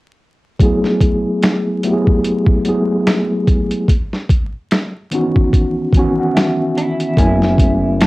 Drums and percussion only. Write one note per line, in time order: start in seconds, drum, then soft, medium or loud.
0.59 kick loud
0.59 closed hi-hat medium
0.84 snare soft
1.01 kick medium
1.01 closed hi-hat medium
1.43 finger snap medium
1.43 snare loud
1.43 closed hi-hat medium
1.83 closed hi-hat medium
2.07 kick medium
2.24 closed hi-hat medium
2.46 kick medium
2.65 closed hi-hat medium
3.07 finger snap medium
3.07 snare loud
3.07 closed hi-hat medium
3.48 kick medium
3.48 closed hi-hat medium
3.71 closed hi-hat soft
3.88 kick loud
3.88 closed hi-hat medium
4.13 snare soft
4.29 kick medium
4.29 closed hi-hat medium
4.71 finger snap medium
4.71 snare medium
4.71 closed hi-hat medium
5.11 closed hi-hat medium
5.36 kick medium
5.53 kick medium
5.53 closed hi-hat medium
5.92 kick loud
5.92 closed hi-hat medium
6.37 finger snap medium
6.37 snare loud
6.37 closed hi-hat medium
6.78 closed hi-hat medium
7.00 closed hi-hat soft
7.17 kick medium
7.17 closed hi-hat medium
7.42 snare soft
7.58 kick loud
7.58 closed hi-hat medium
8.01 finger snap medium
8.01 snare loud
8.01 closed hi-hat medium